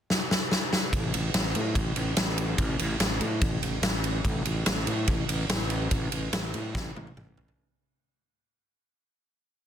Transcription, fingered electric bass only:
0.93 A1
1.13 A1
1.34 A1
1.55 A2
1.75 A1
1.96 A1
2.17 A1
2.58 A1
2.80 A1
3.00 A1
3.20 A2
3.42 A1
3.62 A1
3.82 A1
4.25 A1
4.45 A1
4.67 A1
4.87 A2
5.08 A1
5.28 A1
5.49 A1
5.91 A1
6.12 A1
6.33 A1
6.54 A2
6.75 A1
6.95 A1
7.16 A1

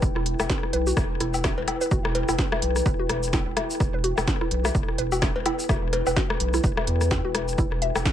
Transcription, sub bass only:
0.02 E1
0.40 E1
0.73 B1
0.97 E1
1.21 E1
1.58 E1
1.91 E1
2.29 E1
2.62 B1
2.86 E1
3.09 E1
3.47 E1
3.80 E1
4.18 E1
4.51 B1
4.75 E1
4.98 E1
5.36 E1
5.69 E1
6.07 E1
6.40 B1
6.64 E1
6.87 E2
7.25 E1
7.58 E1
7.95 E1

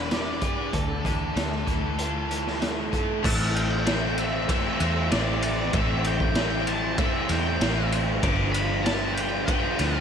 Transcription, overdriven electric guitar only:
Already playing: E3 D4
0.10 B3
0.42 G#4
0.73 D3
1.04 E3
1.36 A3
1.66 E3
1.98 F4
2.29 E3
2.61 A3
2.92 A4
3.22 A2 E3 A3 C4 E4
3.84 E3 A3 C4 E4
4.48 A2 E3 A3 C4 E4
4.79 A3 C4 E4
5.12 E3 A3 C4 E4
5.74 A2 E3 A3 C4 E4
6.35 E3 A3 C4 E4
6.98 A2 E3 A3 C4 E4
7.30 A3 C4 E4
7.60 E3 A3 C4 E4
8.23 G2 D3 F3 B3 F4
8.85 D3 F3 B3 F4
9.47 G2 D3 F3 B3 F4
9.78 F3 B3 F4

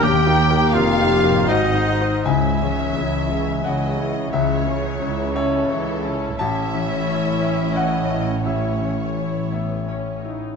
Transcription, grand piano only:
0.03 D#2
0.26 D#4 G4 A#4
0.50 D#4 G4 A#4
0.74 D#4 G4 A#4
0.98 D#4 G4 A#4
1.23 D#4 G4 A#4
1.49 G#2
1.74 D#4 F#4 C5
2.01 D#4 F#4 C5
2.25 C#2 G#5
2.62 C#4
2.96 C#5
3.32 E5
3.64 C#5 F#5
4.00 E4
4.33 C#2 E5
4.68 C#4
5.02 C#5
5.35 C#5 E5
5.70 C#5
6.05 E4
6.39 A1 A5
6.75 C#4
7.08 C#5
7.42 E5
7.75 C#5 F#5
8.10 E4
8.45 A1 E5
8.82 C#4
9.17 C#5
9.52 E5
9.89 C#5
10.24 E4

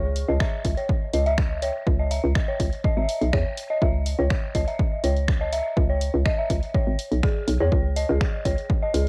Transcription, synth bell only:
0.28 D#5
0.40 E5
0.77 C#5
1.14 D#5
1.26 E5
1.62 C#5
1.99 D#5
2.11 E5
2.48 C#5
2.84 D#5
2.97 E5
3.33 C#5
3.70 D#5
3.82 E5
4.19 C#5
4.55 D#5
4.68 E5
5.04 C#5
5.41 D#5
5.52 E5
5.90 C#5
6.26 D#5
6.38 E5
6.74 C#5
7.23 G#4
7.60 C#5
7.96 D#5
8.09 G#4
8.45 C#5
8.82 D#5
8.94 G#4

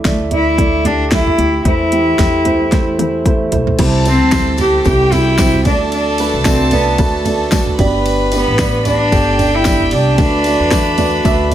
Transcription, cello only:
0.06 A3
0.33 E4
0.86 D4
1.13 E4
1.66 E4
4.08 C4
4.61 G4
4.87 G4
5.13 E4
5.67 D4
5.93 D4
6.46 C4
6.72 B3
7.00 A3
8.34 B3
8.87 D4
9.55 E4
9.93 D4

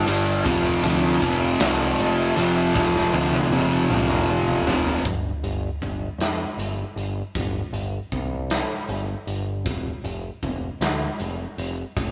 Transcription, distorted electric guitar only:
0.06 G2 D3 G3
0.44 F2 C3 F3
0.83 F2 C3 F3
1.21 F2 C3 F3
1.60 F2 C3 F3
2.36 F2 C3 F3
2.75 F2 C3 F3
3.13 F2 C3 F3
3.52 F2 C3 F3
3.89 F2 C3 F3
4.67 F2 C3 F3

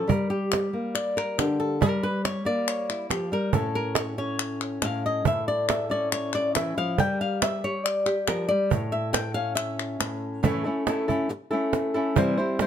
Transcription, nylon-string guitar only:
0.07 G3 A#4
0.30 G4
0.53 G4
0.73 A#3
0.95 D5
1.17 A#4
1.38 D3 G4
1.60 A4
1.81 G3 A#4
2.03 B4
2.25 C#5
2.45 A#3 D5
2.69 C#5
2.90 E4
3.10 F3 G4
3.32 G3 A#4
3.53 A2 C#4 A4
3.75 A#4
3.97 C#5
4.18 C#4 C#5
4.82 A2 F5
5.06 D#5
5.25 A2 E5
5.48 D5
5.69 E5
5.90 C#4 D5
6.12 C#5
6.35 D5
6.55 E3 E5
6.77 F3 F5
6.98 G3 G4 A#4 G5
7.21 F5
7.42 E5
7.64 G4 C#5
7.85 D5
8.06 G4
8.28 F3 A#4
8.48 G3 D5
8.70 A2 C#5
8.92 E5
9.13 G5
9.34 C#4 F5
9.55 E5
10.00 A2
10.43 A2 E3 A3 C#4 E4 A4
10.64 A3 C#4 E4 A4
10.86 A3 C#4 E4 A4
11.08 A3 C#4 E4 A4
11.29 muted nylon-string guitar stroke
11.51 A3 C#4 E4 A4
11.94 A3 C#4 E4 A4
12.16 C3 E3 G3 C4 E4 C5
12.37 G3 C4 E4 C5
12.60 G3 C4 E4 C5

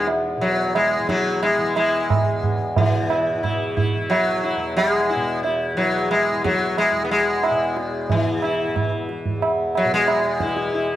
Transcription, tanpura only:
Already playing: E2 B2 E3
0.37 B2
0.98 E3
1.58 E3
2.17 E2
2.77 B2
3.37 E3
3.96 E3
4.56 E2
5.16 B2
5.74 E3
6.32 E3
6.91 E2
7.51 B2
8.10 E3
8.68 E3
9.27 E2
9.85 B2
10.44 E3

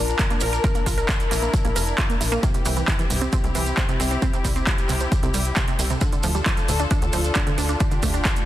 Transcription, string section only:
Already playing: D4 F4 A#4
0.64 E4
2.43 C4 E4 G4
6.01 D4 F4 A4
7.81 G4

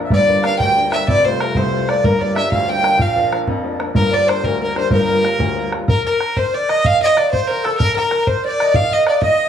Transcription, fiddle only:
0.14 D5
0.46 F5
0.59 G5
0.92 E5
1.08 D5
1.25 C5
1.41 A#4
1.57 C5
1.89 D5
2.05 A#4
2.22 D5
2.37 E5
2.51 F5
2.69 G5
3.01 F5
3.96 A#4
4.14 D5
4.28 C5
4.45 A#4
4.63 A#4
4.77 C5
4.93 A#4
5.89 A#4
6.06 A#4
6.37 C5
6.54 D5
6.69 D#5
6.86 F5
7.02 D#5
7.17 D5
7.31 C5
7.43 A#4 C5
7.65 A4
7.77 A#4
7.96 A#4
8.23 A#4
8.27 C5
8.45 D5
8.76 F5
8.93 D#5
9.08 D5
9.22 D#5

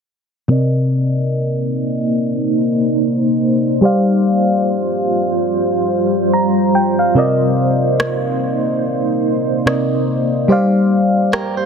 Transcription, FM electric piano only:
0.48 C3 C4 A#4 D5 D#5
3.81 G3 G4 C5 D5
3.85 F5
6.33 A#5
6.75 G5
6.99 F5
7.15 C3 C4 A#4 D5
7.19 D#5
9.66 C3 C4 A#4 D5 D#5
10.48 G3 G4 C5 D5
10.52 F5

